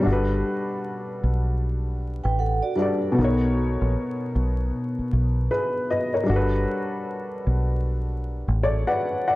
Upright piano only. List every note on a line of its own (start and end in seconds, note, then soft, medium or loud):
0.00 2.71 G3 medium
0.00 2.73 D4 medium
0.06 2.74 F#4 medium
0.06 2.76 A4 medium
0.12 2.78 B4 medium
2.76 3.16 G3 medium
2.76 3.17 D4 medium
2.76 3.18 F#4 medium
2.80 3.18 A4 medium
2.80 3.19 D5 medium
3.12 6.22 B2 medium
3.12 6.24 B3 medium
3.18 6.25 D#4 medium
3.18 5.49 A#4 medium
3.24 5.50 C#5 medium
5.51 5.88 G#4 medium
5.51 5.88 B4 medium
5.91 6.13 B4 medium
5.91 6.13 D#5 medium
6.14 6.51 A#4 medium
6.14 6.51 C#5 medium
6.24 9.34 G3 medium
6.24 9.35 D4 medium
6.30 9.36 F#4 medium
6.30 8.60 A4 medium
6.36 8.62 B4 medium
8.63 8.86 A4 medium
8.63 8.86 C#5 medium
8.63 8.85 D5 medium
8.87 9.24 B4 medium
8.87 9.24 D5 medium
8.87 9.26 F#5 medium
9.28 9.36 D5 medium
9.28 9.36 F#5 medium